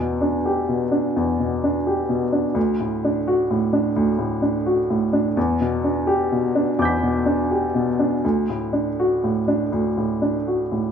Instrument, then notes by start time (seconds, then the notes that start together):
upright piano
Already playing: E2 B2
0.21 D4
0.45 G4
0.69 B2
0.91 D4
1.16 E2
1.39 B2
1.64 D4
1.87 G4
2.09 B2
2.32 D4
2.54 D2
2.80 A2
3.04 D4
3.27 F#4
3.51 A2
3.73 D4
3.96 D2
4.18 A2
4.42 D4
4.66 F#4
4.90 A2
5.13 D4
5.37 E2
5.61 B2
5.84 D4
6.07 G4
6.32 B2
6.55 D4
6.79 E2 D6 G6
6.85 B6
7.02 B2
7.26 D4
7.51 G4
7.75 B2
7.99 D4
8.24 D2
8.49 A2
8.73 D4
8.99 F#4
9.24 A2
9.48 D4
9.72 D2
9.97 A2
10.22 D4
10.47 F#4
10.72 A2